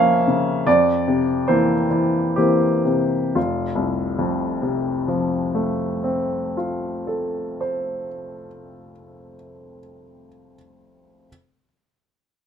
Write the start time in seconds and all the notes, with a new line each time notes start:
Already playing: F2 C#3 F3 A#3 C#4 E5 F5
0.28 C#3
0.67 F2 D5
1.08 C3
1.48 E3 A#3 C4 C5
1.91 E3
2.36 E3 A#3 C4 G4
2.85 C3
3.35 F1 F4
3.76 C2
4.19 F2
4.62 C3
5.08 F3
5.55 A3
6.04 C4
6.57 F4
7.07 A4
7.61 C5